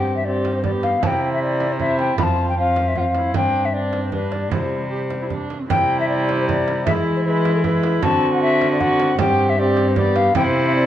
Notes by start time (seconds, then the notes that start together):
Already playing: G2 C4 G4 G5
0.16 E5
0.25 C4 G4 D5
0.45 frame drum
0.56 C5
0.63 B3 G4 D5, frame drum
0.83 F5, frame drum
1.03 C3 C4 E4 G5 A5, frame drum
1.33 E5
1.43 D5
1.60 frame drum
1.73 C5
1.80 C4 E4 E5, frame drum
1.99 G5, frame drum
2.18 F2 C4 F4 B5, frame drum
2.23 A5
2.49 G5
2.57 C4 F4 F5
2.76 frame drum
2.88 E5
2.95 C4 F4 F#5, frame drum
3.01 F5
3.15 E4, frame drum
3.34 G2 C4 D4 G5, frame drum
3.65 E5
3.73 C4 D4 D5
3.93 frame drum
4.05 C5
4.12 G3 D4 B4, frame drum
4.32 D5, frame drum
4.51 C3 G3 E4 C5, frame drum
4.91 G4
5.11 frame drum
5.22 E4
5.30 D4, frame drum
5.50 frame drum
5.61 C4
5.70 C3 G3 E4 G5, frame drum
6.00 E5
6.09 D5
6.29 frame drum
6.40 C5
6.49 D5, frame drum
6.68 frame drum
6.86 E3 G#3 E4 E5, frame drum
7.16 C5
7.25 G#3 E4 C5
7.30 B4
7.45 frame drum
7.56 A4
7.64 G#3 E4 B4, frame drum
7.84 frame drum
8.03 D3 C4 F#4 A5, frame drum
8.34 F#5
8.42 E5
8.61 frame drum
8.72 D5
8.80 C4 F#4 F#5, frame drum
8.99 frame drum
9.19 G2 C4 G4 G5, frame drum
9.50 E5
9.59 C4 G4 D5
9.77 frame drum
9.89 C5
9.96 B3 G4 D5, frame drum
10.16 F5, frame drum
10.35 C3 C4 E4 G5, frame drum
10.66 E5
10.76 D5